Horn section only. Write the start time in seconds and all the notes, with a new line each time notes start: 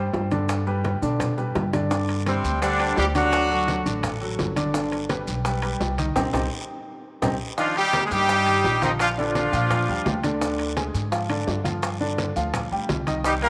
2.27 C3 G3 C4
2.62 D3 G3 D4
2.98 G3 D4 G4
3.15 F#3 D4 F#4
7.58 F3 D4 F4
7.77 G3 D#4 G4
8.05 G#3 G#4
8.12 G3 D#4 G4
8.83 D#3 C4 D#4
9.01 F3 D4 F4
9.19 F3 D4 F4
13.26 G3 D#4 G4
13.43 A#3 G4 A#4